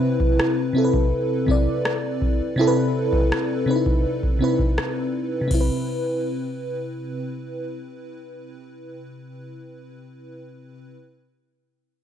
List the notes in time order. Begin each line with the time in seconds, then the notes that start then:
Already playing: C3 C4 E4 B4
0.20 kick
0.40 cross-stick
0.73 C3 C4 E4
0.78 A4
0.84 B4
0.94 kick
1.46 C3 C4 E4, kick
1.51 D5
1.85 cross-stick
2.22 kick
2.56 C3 C4 E4
2.61 A4
2.67 B4
3.13 kick
3.32 cross-stick
3.66 C3 C4 D#4
3.71 B4
3.76 E4
3.86 kick
4.23 kick
4.39 C3 C4 E4
4.44 B4
4.59 kick
4.78 cross-stick
5.41 C3
5.48 C4, kick, crash
5.54 E4
5.61 B4